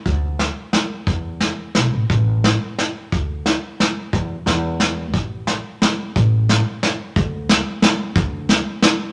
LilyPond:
<<
  \new Staff \with { instrumentName = "Upright bass" } { \clef bass \time 3/4 \key e \mixolydian \tempo 4 = 178 d,2 r4 | e,2 b,,8 a,,8 | a,,2 r4 | d,2 r4 |
e,4 e,2 | a,,2 r4 | a,,2 r4 | d,2 r4 |
d,2 r4 | }
  \new DrumStaff \with { instrumentName = "Drums" } \drummode { \time 3/4 <hh bd>4 <hh sn>4 <hh sn>4 | <hh bd>4 <hh sn>4 <hh sn>4 | <hh bd>4 <hh sn>4 <hh sn>4 | <hh bd>4 <hh sn>4 <hh sn>4 |
<hh bd>4 <hh sn>4 <hh sn>4 | <hh bd>4 <hh sn>4 <hh sn>4 | <hh bd>4 <hh sn>4 <hh sn>4 | <hh bd>4 <hh sn>4 <hh sn>4 |
<hh bd>4 <hh sn>4 <hh sn>4 | }
>>